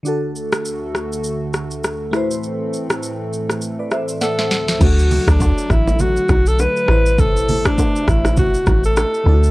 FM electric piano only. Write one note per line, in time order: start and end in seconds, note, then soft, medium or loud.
0.03 2.08 D3 medium
0.03 2.09 D4 medium
0.03 2.10 F#4 medium
0.08 2.11 A4 medium
2.11 4.46 A3 medium
2.11 4.47 E4 medium
2.11 3.60 B4 medium
2.16 3.60 C5 medium
3.79 3.91 B4 medium
3.79 3.91 D5 medium
3.92 4.20 C5 medium
3.92 4.20 E5 medium
4.21 4.38 D5 medium
4.21 4.38 F#5 medium
4.38 4.67 C5 medium
4.38 4.67 E5 medium
4.78 6.83 D3 medium
4.78 6.84 D4 medium
4.78 6.85 F#4 medium
4.83 6.86 A4 medium
6.86 9.21 A3 medium
6.86 9.22 E4 medium
6.86 9.23 B4 medium
6.91 9.24 C5 medium
9.24 9.51 D3 medium
9.24 9.51 D4 medium
9.24 9.34 E4 medium
9.29 9.51 A4 medium
9.34 9.51 F#4 medium